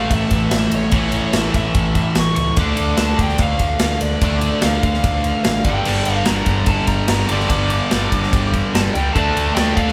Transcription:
Already playing: overdriven electric guitar A2 E3 A3, lead electric guitar F5
0.11 picked electric bass A1, lead electric guitar E5, kick, ride
0.31 picked electric bass A1, kick, ride
0.51 picked electric bass A1, snare, ride
0.56 lead electric guitar E5
0.71 picked electric bass A1, ride
0.76 lead electric guitar C#5
0.91 picked electric bass A1, overdriven electric guitar A2 E3 A3, kick, ride
1.12 ride
1.33 picked electric bass A1, lead electric guitar E5, snare, ride
1.54 picked electric bass A1, lead electric guitar E5, kick, ride
1.75 picked electric bass A1, kick, ride
1.95 kick, ride
2.15 picked electric bass A1, lead electric guitar C#6, snare, ride
2.36 picked electric bass C#2, lead electric guitar C#6, ride
2.57 picked electric bass D2, overdriven electric guitar D3 A3 D4, lead electric guitar D6, kick, ride
2.77 picked electric bass D2, ride
2.97 picked electric bass D2, lead electric guitar A5, snare, ride
3.19 picked electric bass D2, lead electric guitar G5, kick, ride
3.29 snare
3.38 picked electric bass D2, lead electric guitar F5, kick, ride
3.59 picked electric bass D2, kick, ride
3.79 picked electric bass D2, lead electric guitar F5, snare, ride
4.01 picked electric bass D2, lead electric guitar D5, ride
4.21 picked electric bass D2, overdriven electric guitar D3 A3 D4, kick, ride
4.41 ride
4.62 picked electric bass D2, lead electric guitar F5, snare, ride
4.83 picked electric bass D2, lead electric guitar F5, kick, ride
4.94 snare
5.04 picked electric bass D2, kick, ride
5.24 ride
5.44 picked electric bass A1, lead electric guitar F5, snare, ride
5.64 picked electric bass G1, overdriven electric guitar G2 D3 G3, lead electric guitar G5, kick, ride
5.85 picked electric bass G1, overdriven electric guitar G2 D3 G3, crash
6.05 picked electric bass G1, ride
6.14 lead electric guitar F5
6.25 picked electric bass G1, overdriven electric guitar G2 D3 G3, lead electric guitar A#5, snare, ride
6.46 picked electric bass G1, overdriven electric guitar G2 D3 G3, kick, ride
6.66 picked electric bass G1, overdriven electric guitar G2 D3 G3, lead electric guitar A5, kick, ride
6.87 picked electric bass G1, lead electric guitar A#5, kick, ride
7.08 picked electric bass G1, overdriven electric guitar G2 D3 G3, lead electric guitar A#5, snare, ride
7.28 picked electric bass G1, overdriven electric guitar G2 D3 G3, lead electric guitar D6, ride
7.40 snare
7.50 picked electric bass G1, overdriven electric guitar G2 D3 G3, lead electric guitar D6, kick, ride
7.70 lead electric guitar D6, ride
7.91 picked electric bass G1, overdriven electric guitar G2 D3 G3, snare, ride
8.12 picked electric bass G1, overdriven electric guitar G2 D3 G3, kick, ride
8.23 snare
8.33 picked electric bass G1, overdriven electric guitar G2 D3 G3, kick, ride
8.54 kick, ride
8.74 picked electric bass G1, overdriven electric guitar G2 D3 G3, lead electric guitar A5, snare, ride
8.94 picked electric bass C#2, overdriven electric guitar G2 D3 G3, lead electric guitar G5, ride
9.13 picked electric bass D2, overdriven electric guitar D3 A3 D4, lead electric guitar A5, kick, ride
9.18 overdriven electric guitar D4
9.36 picked electric bass D2, ride
9.55 picked electric bass D2, overdriven electric guitar D3 A3 D4, lead electric guitar G5, snare, ride
9.76 picked electric bass D2, overdriven electric guitar D3 A3 D4, lead electric guitar F5, kick, ride
9.88 snare

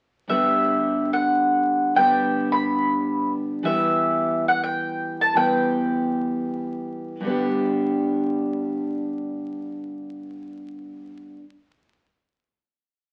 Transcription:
0.28 steel-string acoustic guitar G2 D3 G3 B3 D4 G4, mandolin E5
1.13 mandolin F#5
1.95 steel-string acoustic guitar G2 D3 G3 B3 D4, mandolin G5
1.99 steel-string acoustic guitar G4
2.52 mandolin B5
3.63 steel-string acoustic guitar E3 G3 B3 G4, mandolin E5
4.48 mandolin F#5
4.64 mandolin G5
5.21 mandolin A5
5.34 steel-string acoustic guitar E3 G3 B3 G4, mandolin G5
7.20 steel-string acoustic guitar G2 D3
7.25 steel-string acoustic guitar G3 B3 D4
7.30 steel-string acoustic guitar G4

